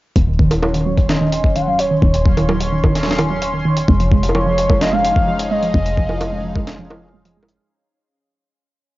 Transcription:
0.16 2.00 D#1 medium
0.16 7.61 C#4 medium
0.16 7.61 C6 medium
0.16 kick loud
0.16 closed hi-hat medium
0.28 0.35 D#3 medium
0.39 0.50 D#3 loud
0.39 kick loud
0.51 closed hi-hat medium
0.51 high bongo medium
0.63 0.67 F#3 medium
0.63 1.11 C#5 medium
0.63 high bongo medium
0.74 0.81 D#3 medium
0.74 closed hi-hat medium
0.86 0.93 F#3 loud
0.97 kick loud
0.97 closed hi-hat medium
1.09 1.16 D#3 medium
1.09 1.57 D#5 loud
1.09 snare loud
1.21 1.31 D#3 loud
1.32 closed hi-hat medium
1.44 1.48 F#3 medium
1.44 kick medium
1.56 1.63 D#3 medium
1.56 1.63 F5 loud
1.56 closed hi-hat medium
1.62 1.69 F#5 medium
1.67 1.74 F#3 loud
1.67 1.79 F5 loud
1.79 2.68 C#5 medium
1.79 closed hi-hat medium
1.91 1.98 D#3 medium
2.02 3.86 D#1 medium
2.02 2.13 D#3 loud
2.02 kick loud
2.14 closed hi-hat medium
2.25 2.30 F#3 medium
2.25 kick loud
2.37 2.44 D#3 medium
2.37 closed hi-hat medium
2.37 high bongo medium
2.49 2.56 F#3 loud
2.49 high bongo medium
2.60 closed hi-hat medium
2.72 2.79 D#3 medium
2.84 2.94 D#3 loud
2.84 kick loud
2.84 high bongo medium
2.95 snare medium
2.95 closed hi-hat medium
3.03 3.11 F#3 medium
3.03 snare medium
3.11 snare medium
3.18 3.26 D#3 medium
3.18 closed hi-hat medium
3.18 high bongo medium
3.30 3.37 F#3 loud
3.42 closed hi-hat medium
3.54 3.61 D#3 medium
3.65 3.76 D#3 loud
3.77 closed hi-hat medium
3.88 5.72 F1 medium
3.88 7.60 F3 medium
3.88 3.93 G#3 medium
3.88 kick loud
4.00 4.07 F3 medium
4.00 closed hi-hat soft
4.06 7.60 G#3 medium
4.11 4.19 G#3 loud
4.11 kick loud
4.23 closed hi-hat medium
4.29 high bongo soft
4.35 4.42 F3 medium
4.35 4.83 C#5 loud
4.35 high bongo medium
4.46 4.57 F3 loud
4.58 7.60 F5 medium
4.58 closed hi-hat medium
4.70 4.74 G#3 medium
4.70 kick loud
4.70 high bongo medium
4.81 4.88 F3 medium
4.81 7.60 D#4 medium
4.81 4.94 D#5 loud
4.81 snare loud
4.81 closed hi-hat medium
4.93 5.00 G#3 loud
4.93 5.27 F5 loud
5.01 7.60 G#4 medium
5.01 closed hi-hat medium
5.16 5.23 F3 medium
5.16 kick medium
5.28 5.38 F3 loud
5.28 5.38 F5 loud
5.39 closed hi-hat medium
5.51 5.55 G#3 medium
5.51 7.10 D#5 loud
5.63 5.70 F3 medium
5.63 closed hi-hat soft
5.74 7.58 F1 medium
5.74 5.81 G#3 loud
5.74 kick loud
5.86 closed hi-hat medium
5.98 6.05 F3 medium
5.98 kick loud
6.09 6.20 F3 loud
6.09 high bongo soft
6.21 closed hi-hat medium
6.21 high bongo medium
6.32 6.37 G#3 medium
6.44 6.51 F3 medium
6.56 6.63 G#3 loud
6.56 kick loud
6.56 high bongo soft
6.67 snare loud
6.67 closed hi-hat medium
6.79 6.86 F3 medium
6.91 7.01 F3 loud
6.91 high bongo medium
7.14 7.18 G#3 medium
7.25 7.33 F3 medium
7.25 closed hi-hat soft
7.37 7.44 G#3 loud
7.43 high bongo medium
7.49 closed hi-hat medium

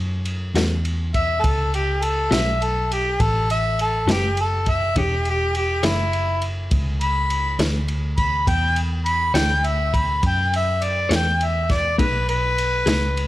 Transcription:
0.00 0.53 F#2 medium
0.25 ride medium
0.55 1.41 E2 medium
0.55 0.74 A2 medium
0.55 0.74 G3 medium
0.55 0.74 C#4 medium
0.55 0.73 F#4 medium
0.55 snare loud
0.55 ride medium
0.85 ride medium
1.14 1.44 E5 loud
1.14 kick medium
1.14 ride medium
1.43 2.29 C#2 medium
1.43 1.72 A4 medium
1.43 kick loud
1.43 ride medium
1.74 2.06 G4 medium
1.74 ride medium
2.02 2.34 A4 medium
2.02 ride medium
2.31 3.17 B1 medium
2.31 2.50 A2 medium
2.31 2.50 G3 medium
2.31 2.49 C#4 medium
2.31 2.49 F#4 medium
2.31 2.64 E5 medium
2.31 snare loud
2.31 ride medium
2.62 2.91 A4 medium
2.62 ride medium
2.92 3.23 G4 medium
2.92 ride medium
3.20 4.05 A1 medium
3.20 3.49 A4 medium
3.20 kick loud
3.20 ride medium
3.50 3.78 E5 loud
3.50 ride medium
3.79 4.08 A4 medium
3.79 ride medium
4.07 4.92 F#1 medium
4.07 4.26 A2 medium
4.07 4.26 G3 medium
4.07 4.25 C#4 medium
4.07 4.25 F#4 medium
4.07 snare loud
4.07 ride medium
4.11 4.38 G4 loud
4.37 4.71 A4 medium
4.37 ride medium
4.66 4.96 E5 loud
4.66 kick medium
4.66 ride medium
4.96 5.81 E1 medium
4.96 5.13 E3 medium
4.96 5.14 D4 medium
4.96 5.25 G4 medium
4.96 5.14 G#4 medium
4.96 5.14 C#5 medium
4.96 kick loud
4.96 ride medium
5.25 ride medium
5.30 5.56 G4 medium
5.55 5.87 G4 medium
5.55 ride medium
5.83 6.69 F#1 medium
5.83 6.02 E3 medium
5.83 6.01 D4 medium
5.83 6.42 E4 loud
5.83 6.01 G#4 medium
5.83 6.01 C#5 medium
5.83 snare loud
5.83 ride medium
6.13 ride medium
6.42 ride medium
6.71 7.57 C#2 medium
6.71 kick loud
6.71 ride medium
7.01 7.58 B5 loud
7.01 ride medium
7.30 ride medium
7.59 8.45 D2 medium
7.59 7.78 E3 medium
7.59 7.78 D4 medium
7.59 7.77 G#4 medium
7.59 7.77 C#5 medium
7.59 snare loud
7.59 ride medium
7.88 ride medium
8.18 8.47 B5 medium
8.18 kick medium
8.18 ride medium
8.47 9.33 E2 medium
8.47 8.76 G5 loud
8.47 kick loud
8.47 ride medium
8.76 ride medium
9.05 9.34 B5 loud
9.05 ride medium
9.34 10.20 D2 medium
9.34 9.53 E3 medium
9.34 9.53 D4 medium
9.34 9.53 G#4 medium
9.34 9.52 C#5 medium
9.34 9.67 G5 loud
9.34 snare loud
9.34 ride medium
9.64 9.97 E5 medium
9.64 ride medium
9.94 10.23 B5 medium
9.94 kick medium
9.94 ride medium
10.23 11.09 F#2 medium
10.23 10.53 G5 medium
10.23 kick loud
10.23 ride medium
10.54 10.85 E5 medium
10.54 ride medium
10.82 11.11 D5 medium
10.82 ride medium
11.09 11.96 E2 medium
11.09 11.29 E3 medium
11.09 11.29 D4 medium
11.09 11.28 G#4 medium
11.09 11.28 C#5 medium
11.09 snare loud
11.09 ride medium
11.15 11.46 G5 medium
11.41 11.73 E5 medium
11.41 ride medium
11.69 11.98 D5 medium
11.69 kick medium
11.69 snare soft
11.69 ride medium
11.98 12.84 B1 medium
11.98 12.16 B2 medium
11.98 12.16 A3 medium
11.98 12.17 D#4 medium
11.98 12.17 G#4 medium
11.98 12.27 B4 medium
11.98 kick loud
11.98 ride medium
12.29 13.27 B4 loud
12.29 ride medium
12.58 ride medium
12.86 13.27 C#2 medium
12.86 13.05 B2 medium
12.86 13.05 A3 medium
12.86 13.05 D#4 medium
12.86 13.04 G#4 medium
12.86 snare loud
12.86 ride medium
13.17 ride medium

